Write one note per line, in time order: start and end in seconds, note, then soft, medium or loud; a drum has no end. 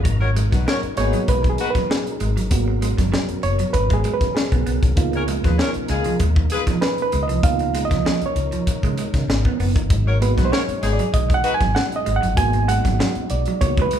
0.03 0.47 G#1 loud
0.03 13.99 B2 medium
0.03 4.92 F#3 medium
0.03 2.48 D#4 medium
0.03 9.85 A#4 medium
0.03 kick loud
0.03 closed hi-hat medium
0.20 0.29 F#4 medium
0.20 0.29 A#4 medium
0.20 0.29 C#5 medium
0.20 muted clean electric guitar stroke soft
0.36 0.49 G#3 medium
0.36 closed hi-hat medium
0.52 0.65 B1 medium
0.52 0.64 F#3 medium
0.52 0.63 D#4 medium
0.52 0.63 F#4 medium
0.52 0.63 B4 medium
0.52 kick medium
0.52 snare soft
0.52 closed hi-hat soft
0.67 0.76 F#4 medium
0.67 0.77 A#4 medium
0.67 0.77 C#5 loud
0.67 muted clean electric guitar stroke soft
0.67 snare loud
0.83 muted fingered electric bass stroke soft
0.83 closed hi-hat soft
0.96 1.12 G#1 loud
0.96 1.11 G#3 medium
0.96 2.49 A#3 medium
0.96 2.50 B3 soft
0.96 1.22 B3 loud
0.96 1.22 D#4 loud
0.96 2.51 F#4 medium
0.96 1.22 G#4 loud
0.96 1.29 C#5 loud
0.96 snare soft
0.96 closed hi-hat medium
1.13 1.25 F#3 medium
1.13 closed hi-hat soft
1.28 1.55 B1 loud
1.28 1.41 G#3 medium
1.28 1.50 B4 loud
1.28 kick medium
1.28 closed hi-hat medium
1.44 muted clean electric guitar stroke soft
1.44 kick medium
1.44 closed hi-hat soft
1.50 1.70 G#4 medium
1.58 1.69 D#4 medium
1.58 1.69 F#4 medium
1.58 1.69 B4 medium
1.58 closed hi-hat medium
1.70 1.91 B4 medium
1.75 1.87 F#3 medium
1.75 kick medium
1.75 snare soft
1.75 closed hi-hat soft
1.90 2.79 G#4 medium
1.90 muted clean electric guitar stroke soft
1.90 snare loud
2.07 closed hi-hat soft
2.20 2.37 G#1 medium
2.20 2.34 G#3 medium
2.20 closed hi-hat medium
2.37 2.51 G1 medium
2.37 2.48 F#3 medium
2.37 closed hi-hat medium
2.51 2.92 G#1 loud
2.51 2.79 A#3 medium
2.51 4.93 B3 medium
2.51 4.95 C#4 medium
2.51 4.94 F#4 medium
2.51 kick loud
2.51 closed hi-hat medium
2.68 muted clean electric guitar stroke soft
2.82 2.95 G#3 medium
2.82 closed hi-hat medium
2.98 3.11 F#1 medium
2.98 3.10 F#3 medium
2.98 kick medium
2.98 snare soft
2.98 closed hi-hat soft
3.12 3.26 F#3 medium
3.12 snare loud
3.29 muted fingered electric bass stroke soft
3.29 closed hi-hat soft
3.43 3.58 F#1 medium
3.43 3.75 C#5 loud
3.43 muted clean electric guitar stroke soft
3.43 closed hi-hat medium
3.59 3.71 F#3 medium
3.59 closed hi-hat soft
3.73 4.01 G#1 loud
3.73 3.95 B4 loud
3.73 muted clean electric guitar stroke soft
3.73 kick medium
3.73 closed hi-hat medium
3.90 4.02 G#3 medium
3.90 4.15 G#4 loud
3.90 kick loud
3.90 closed hi-hat soft
4.04 4.18 G#3 medium
4.04 closed hi-hat medium
4.14 4.35 B4 medium
4.21 kick medium
4.21 snare soft
4.21 closed hi-hat soft
4.34 5.23 G#4 medium
4.34 muted clean electric guitar stroke soft
4.34 snare loud
4.52 4.65 B1 medium
4.52 4.64 B3 medium
4.52 kick medium
4.52 closed hi-hat soft
4.66 4.81 B1 medium
4.66 4.79 B3 medium
4.66 closed hi-hat medium
4.83 4.95 C2 medium
4.83 kick loud
4.83 closed hi-hat medium
4.96 5.38 C#2 loud
4.96 9.86 F3 medium
4.96 7.39 A#3 medium
4.96 7.39 B3 medium
4.96 13.99 D#4 medium
4.96 7.39 D#4 medium
4.96 7.39 F4 medium
4.96 kick loud
4.96 closed hi-hat medium
5.13 5.23 G#4 medium
5.13 5.22 A#4 medium
5.13 5.23 C#5 medium
5.13 muted clean electric guitar stroke soft
5.13 closed hi-hat soft
5.28 5.41 G#3 medium
5.28 closed hi-hat medium
5.44 5.57 D#2 loud
5.44 5.56 F3 medium
5.44 5.56 F4 medium
5.44 5.56 G#4 medium
5.44 5.56 B4 medium
5.44 kick medium
5.44 snare soft
5.44 closed hi-hat soft
5.59 5.69 G#4 medium
5.59 5.68 A#4 loud
5.59 5.68 C#5 medium
5.59 muted clean electric guitar stroke soft
5.59 snare loud
5.74 muted fingered electric bass stroke soft
5.74 closed hi-hat soft
5.88 6.04 C#2 loud
5.88 6.03 G#3 medium
5.88 6.14 D#4 medium
5.88 6.14 F4 loud
5.88 6.14 G#4 loud
5.88 snare soft
5.88 closed hi-hat medium
6.04 6.17 F3 medium
6.04 closed hi-hat soft
6.20 6.47 D#2 medium
6.20 6.33 G#3 medium
6.20 kick medium
6.20 closed hi-hat medium
6.36 muted clean electric guitar stroke soft
6.36 kick loud
6.50 6.61 F4 medium
6.50 6.61 G#4 loud
6.50 6.60 B4 loud
6.50 closed hi-hat medium
6.67 6.79 F3 medium
6.67 kick medium
6.67 snare soft
6.67 closed hi-hat soft
6.81 7.01 B4 medium
6.81 muted clean electric guitar stroke soft
6.81 snare loud
6.98 closed hi-hat soft
7.02 7.24 B4 medium
7.12 7.30 C#2 medium
7.12 7.26 G#3 medium
7.12 closed hi-hat medium
7.23 7.44 D#5 medium
7.29 7.42 C2 medium
7.29 7.41 F3 medium
7.29 closed hi-hat soft
7.43 7.85 C#2 loud
7.43 8.31 A#3 medium
7.43 8.32 B3 medium
7.43 8.32 D#4 medium
7.43 8.32 F4 medium
7.43 7.82 F5 loud
7.43 kick loud
7.43 closed hi-hat medium
7.59 muted clean electric guitar stroke soft
7.59 closed hi-hat soft
7.75 7.88 G#3 medium
7.75 closed hi-hat medium
7.85 8.27 D#5 loud
7.91 8.03 C#2 medium
7.91 8.02 F3 medium
7.91 kick medium
7.91 snare soft
7.91 closed hi-hat soft
8.06 8.19 F3 medium
8.06 snare loud
8.22 muted fingered electric bass stroke soft
8.22 closed hi-hat soft
8.26 9.76 C#5 medium
8.36 8.50 C#2 loud
8.36 muted clean electric guitar stroke soft
8.36 closed hi-hat medium
8.52 8.64 F3 medium
8.52 closed hi-hat soft
8.67 muted clean electric guitar stroke soft
8.67 kick medium
8.67 closed hi-hat medium
8.83 8.96 C#3 medium
8.83 8.95 G#3 medium
8.83 kick medium
8.83 closed hi-hat soft
8.98 9.11 G#3 medium
8.98 closed hi-hat medium
9.14 9.27 C#3 medium
9.14 kick medium
9.14 snare soft
9.14 closed hi-hat soft
9.28 9.42 G#1 medium
9.28 muted clean electric guitar stroke soft
9.28 snare loud
9.45 9.57 B3 medium
9.45 kick medium
9.59 9.76 F#1 medium
9.59 9.73 B3 medium
9.59 open hi-hat medium
9.76 9.88 G1 medium
9.76 kick loud
9.76 closed hi-hat medium
9.90 10.32 G#1 loud
9.90 13.99 F#3 medium
9.90 13.99 G#3 medium
9.90 kick loud
9.90 closed hi-hat medium
10.06 10.15 F#4 medium
10.06 10.15 A#4 medium
10.06 10.15 C#5 medium
10.06 muted clean electric guitar stroke soft
10.20 10.35 G#3 medium
10.20 10.62 A#3 medium
10.20 10.63 B3 soft
10.20 10.63 F#4 medium
10.20 10.33 B4 medium
10.20 closed hi-hat medium
10.37 10.50 B1 medium
10.37 10.50 F#3 medium
10.37 10.49 D#4 medium
10.37 10.49 F#4 medium
10.37 10.48 B4 medium
10.37 kick medium
10.37 snare soft
10.37 closed hi-hat medium
10.45 10.52 C5 medium
10.51 10.61 F#4 medium
10.51 10.61 A#4 medium
10.51 10.61 C#5 loud
10.51 10.94 C#5 medium
10.51 muted clean electric guitar stroke soft
10.51 snare loud
10.68 muted fingered electric bass stroke soft
10.68 closed hi-hat soft
10.81 10.97 G#1 loud
10.81 10.96 G#3 medium
10.81 11.07 B3 medium
10.81 11.07 D#4 medium
10.81 11.07 G#4 loud
10.81 snare soft
10.81 closed hi-hat medium
10.93 11.02 D5 medium
10.99 11.11 F#3 medium
10.99 closed hi-hat soft
11.14 11.41 B1 loud
11.14 11.27 G#3 medium
11.14 11.35 D#5 medium
11.14 kick medium
11.14 closed hi-hat medium
11.30 muted clean electric guitar stroke soft
11.30 kick loud
11.30 closed hi-hat soft
11.34 11.53 F#5 loud
11.43 11.53 D#4 medium
11.43 11.53 F#4 medium
11.43 11.53 B4 loud
11.43 closed hi-hat medium
11.54 11.76 G#5 loud
11.61 11.74 G#1 medium
11.61 11.73 F#3 medium
11.61 kick medium
11.61 snare soft
11.61 closed hi-hat soft
11.75 11.84 F#5 loud
11.75 muted clean electric guitar stroke soft
11.75 snare loud
11.92 12.17 D#5 loud
11.92 closed hi-hat soft
12.06 12.21 G#1 medium
12.06 12.19 G#3 medium
12.06 closed hi-hat medium
12.16 12.38 F#5 loud
12.22 12.36 G1 medium
12.22 12.34 F#3 medium
12.22 closed hi-hat soft
12.36 12.79 G#1 loud
12.36 13.26 A#3 medium
12.36 13.26 B3 medium
12.36 13.26 F#4 medium
12.36 12.69 G#5 loud
12.36 kick loud
12.36 closed hi-hat loud
12.53 muted clean electric guitar stroke soft
12.53 closed hi-hat soft
12.68 12.81 G#3 medium
12.68 13.32 F#5 loud
12.68 closed hi-hat medium
12.85 12.98 G#1 loud
12.85 12.97 F#3 medium
12.85 kick medium
12.85 snare soft
12.85 closed hi-hat soft
13.00 13.13 F#3 medium
13.00 snare loud
13.15 muted fingered electric bass stroke soft
13.15 closed hi-hat soft
13.30 13.45 B1 medium
13.30 13.62 D5 medium
13.30 muted clean electric guitar stroke soft
13.30 closed hi-hat medium
13.46 13.59 F#3 medium
13.46 closed hi-hat soft
13.61 13.88 C#2 loud
13.61 13.89 A#3 medium
13.61 13.89 B3 soft
13.61 13.89 F#4 medium
13.61 13.82 C#5 medium
13.61 muted clean electric guitar stroke soft
13.61 kick medium
13.61 closed hi-hat medium
13.77 13.90 G#3 medium
13.77 kick loud
13.77 closed hi-hat soft
13.82 13.99 B4 medium
13.91 13.99 G#3 medium
13.91 closed hi-hat medium